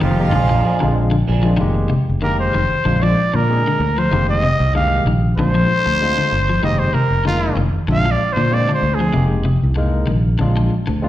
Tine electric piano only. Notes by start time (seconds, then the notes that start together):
0.20 G#3 A#3 D#4 G4
0.81 G#3 C4 D4 F4
1.44 G#3 C4 D4 F4
1.59 G#3 A#3 D#4 G4
2.22 D#3 G#3 A#3 G4
2.85 G#3 C4 D4 F4
3.49 G#3 C4 D4 G#4
4.11 G#3 A#3 D#4 G4
4.75 D#3 G#3 A#3 G4
5.37 G#3 C4 D4 F4
6.01 G#3 C4 D4 F4
6.62 G#3 A#3 D#4 G4
7.26 D#3 G#3 A#3 F4
7.88 G#3 C4 D4 F4
8.51 G#3 C4 D4 F4
9.14 G#3 A#3 D#4 G4
9.77 G#3 A#3 D#4 A#4
10.40 G#3 C4 D4 F4
11.02 G#3 C4 D4 F4